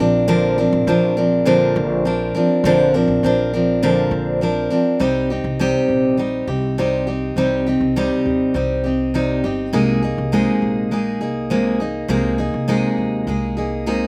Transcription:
0.00 upright bass A#1, steel-string acoustic guitar F3 C4 D4 A#4
0.28 steel-string acoustic guitar A#2 D3 F3 C4 D4 A#4
0.58 steel-string acoustic guitar F3 C4 D4 A#4
0.73 upright bass A#1
0.87 upright bass A#1, steel-string acoustic guitar F3 C4 D4 A#4
1.17 steel-string acoustic guitar F3 C4 D4 A#4
1.45 steel-string acoustic guitar A#2 D3 F3 C4 D4 A#4
1.76 upright bass A#1
2.05 steel-string acoustic guitar F3 C4 D4 A#4
2.35 steel-string acoustic guitar F3 C4 D4 A#4
2.64 upright bass A#1, steel-string acoustic guitar A#2 D3 F3 C4 D4 A#4
2.94 steel-string acoustic guitar F3 C4 D4 A#4
3.08 upright bass A#1
3.23 upright bass A#1, steel-string acoustic guitar F3 C4 D4 A#4
3.53 steel-string acoustic guitar F3 C4 D4 A#4
3.83 steel-string acoustic guitar A#2 D3 F3 C4 D4 A#4
4.11 upright bass A#1
4.41 steel-string acoustic guitar F3 C4 D4 A#4
4.70 steel-string acoustic guitar F3 C4 D4 A#4
4.99 upright bass C2, steel-string acoustic guitar C3 G3 C4 D#4 G4
5.30 steel-string acoustic guitar C4 D#4 G4
5.44 upright bass C2
5.59 steel-string acoustic guitar C3 G3 C4 D#4 G4
5.88 upright bass A#1
6.17 steel-string acoustic guitar G3 C4 D#4 G4
6.47 upright bass C2, steel-string acoustic guitar C4 D#4 G4
6.78 steel-string acoustic guitar C3 G3 C4 D#4 G4
7.07 steel-string acoustic guitar C4 D#4 G4
7.36 upright bass C2, steel-string acoustic guitar C3 G3 C4 D#4 G4
7.67 steel-string acoustic guitar C4 D#4 G4
7.80 upright bass C2
7.96 steel-string acoustic guitar C3 G3 C4 D#4 G4
8.25 upright bass D#2
8.54 upright bass C2, steel-string acoustic guitar G3 C4 D#4 G4
8.84 steel-string acoustic guitar C4 D#4 G4
9.14 steel-string acoustic guitar C3 G3 C4 D#4 G4
9.44 upright bass G1, steel-string acoustic guitar C4 D#4 G4
9.73 upright bass C2, steel-string acoustic guitar C3 G#3 A#3 D#4 G#4
10.02 steel-string acoustic guitar A#3 D#4 G#4
10.18 upright bass C2
10.32 steel-string acoustic guitar C3 G#3 A#3 D#4 G#4
10.62 upright bass A#1
10.91 steel-string acoustic guitar G#3 A#3 D#4 G#4
11.21 upright bass C2, steel-string acoustic guitar A#3 D#4 G#4
11.50 steel-string acoustic guitar C3 G#3 A#3 D#4 G#4
11.80 steel-string acoustic guitar A#3 D#4 G#4
12.08 upright bass C2, steel-string acoustic guitar C3 G#3 A#3 D#4 G#4
12.38 steel-string acoustic guitar A#3 D#4 G#4
12.54 upright bass C2
12.68 steel-string acoustic guitar C3 G#3 A#3 D#4 G#4
12.98 upright bass D#2
13.27 upright bass C2, steel-string acoustic guitar G#3 A#3 D#4 G#4
13.57 steel-string acoustic guitar A#3 D#4 G#4
13.86 steel-string acoustic guitar C3 G#3 A#3 D#4 G#4

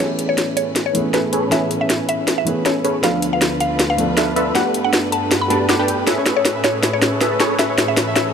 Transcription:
Already playing: grand piano E3, harp G4 A4 B4 D5
0.00 string section A2 C#4 B4, grand piano A3 B3 C#4 G#5, supersaw synth C#4 G#4 A4 B4 E5, synth pluck C#5
0.19 closed hi-hat
0.29 synth pluck C#5
0.38 snare, closed hi-hat
0.57 synth pluck C#5, closed hi-hat
0.76 snare, closed hi-hat
0.86 synth pluck C#5
0.93 grand piano E3 A3 B3 C#4, closed hi-hat
0.97 grand piano G#4
1.14 supersaw synth C#4 G#4 A4 B4 E5, synth pluck B4, snare, closed hi-hat
1.32 supersaw synth C#4 G#4 A4 B4 C#5, closed hi-hat
1.50 grand piano E3 A3 B3 C#4, supersaw synth C#4 G#4 A4 B4 E5, synth pluck E5, snare, closed hi-hat
1.54 grand piano G#5
1.71 closed hi-hat
1.81 synth pluck E5
1.90 snare, closed hi-hat
2.09 synth pluck E5, closed hi-hat
2.28 snare, closed hi-hat
2.38 synth pluck E5
2.45 grand piano E3 A3 B3 C#4 G#4, closed hi-hat
2.65 supersaw synth C#4 G#4 A4 B4 E5, synth pluck C#5, snare, closed hi-hat
2.84 supersaw synth C#4 G#4 A4 B4 C#5, closed hi-hat
3.01 string section D2 D3 F4, grand piano F3 A3 B3 D4, supersaw synth D4 F4 A4 B4 F5, synth pluck F5, snare, closed hi-hat
3.06 grand piano A4
3.22 closed hi-hat
3.33 synth pluck F5
3.42 snare, closed hi-hat
3.60 synth pluck F5, closed hi-hat
3.79 snare, closed hi-hat
3.90 synth pluck F5
3.96 grand piano F3 A3 B3 D4, closed hi-hat
4.00 grand piano A4
4.17 supersaw synth D4 F4 A4 B4 F5, synth pluck E5, snare, closed hi-hat
4.36 supersaw synth D4 F4 A4 B4 E5, closed hi-hat
4.54 string section G2 A4, grand piano A3 B3 D4 G4, supersaw synth D4 G4 A4 B4 F#5, synth pluck F#5, snare, closed hi-hat
4.74 closed hi-hat
4.84 synth pluck F#5
4.93 snare, closed hi-hat
5.12 synth pluck A5, closed hi-hat
5.31 snare, closed hi-hat
5.41 synth pluck B5
5.48 grand piano A3 B3 D4 F#4, supersaw synth D4 G4 A4 B4 A5, closed hi-hat
5.52 grand piano G4
5.69 supersaw synth D4 G4 A4 B4 F#5, synth pluck D6, snare, closed hi-hat
5.79 supersaw synth D4 G4 A4 B4 G5
5.88 closed hi-hat
6.07 string section A2 C#4, supersaw synth C#4 G#4 A4 B4 E5, harp G#4, synth pluck C#5, snare, closed hi-hat, riser
6.18 harp C#5
6.26 harp G#4, snare, closed hi-hat
6.37 harp A4, synth pluck C#5
6.45 harp B4, snare, closed hi-hat
6.56 harp E5
6.64 harp C#5, synth pluck C#5, snare, closed hi-hat
6.74 harp G#4
6.83 harp C#5, snare, closed hi-hat
6.93 synth pluck C#5, harp C#5
7.02 harp G#4, snare, closed hi-hat
7.12 harp A4
7.21 supersaw synth C#4 G#4 A4 B4 E5, synth pluck B4, harp B4, snare, closed hi-hat
7.31 harp A4
7.40 supersaw synth C#4 G#4 A4 B4 C#5, harp C#5, snare, closed hi-hat
7.50 harp A4
7.59 supersaw synth C#4 G#4 A4 B4 E5, harp G#4, synth pluck E5, snare, closed hi-hat
7.69 harp C#5
7.78 harp G#4, snare, closed hi-hat
7.88 harp A4, synth pluck E5
7.97 harp B4, snare, closed hi-hat
8.07 harp E5
8.16 harp C#5, synth pluck E5, snare, closed hi-hat
8.26 harp G#4

